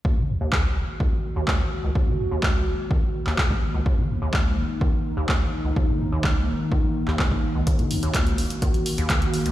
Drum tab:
HH |----------------|----------------|----------------|----------------|
CP |----x-------x---|----x------xx---|----x-------x---|----x------xx---|
BD |o---o---o---o---|o---o---o---oo--|o---o---o---o---|o---o---o---oo--|

HH |xxoxxxoxxxoxxxox|
CP |----x-------x---|
BD |o---o---o---o---|